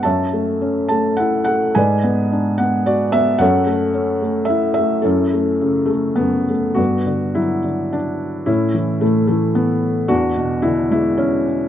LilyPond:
<<
  \new Staff \with { instrumentName = "Felt piano" } { \time 3/4 \key fis \minor \tempo 4 = 108 << { <cis'' e''>4. r4. | <b' d''>4. r4. | <a' cis''>2 r4 | <cis' e'>2~ <cis' e'>8 r8 |
\key g \lydian b4. r4. | cis'4. r4. | d'4. r4. | } \\ { a''4. a''8 fis''8 fis''8 | gis''4. fis''8 d''8 e''8 | fis''2 e''8 e''8 | a'4. a8 b4 |
fis'4 e'4 d'4 | e'4 a8 a8 b4 | fis'4 e'8 e'8 cis'4 | } >> }
  \new Staff \with { instrumentName = "Felt piano" } { \clef bass \time 3/4 \key fis \minor fis,8 a8 cis'8 a8 e'8 a8 | gis,8 b8 d'8 b8 fis'8 b8 | fis,8 a8 cis'8 a8 e'8 a8 | fis,8 a8 cis8 a8 fis,8 a8 |
\key g \lydian g,8 d8 fis8 d4. | a,8 e8 a,8 e4. | e,8 b,8 d8 gis4. | }
>>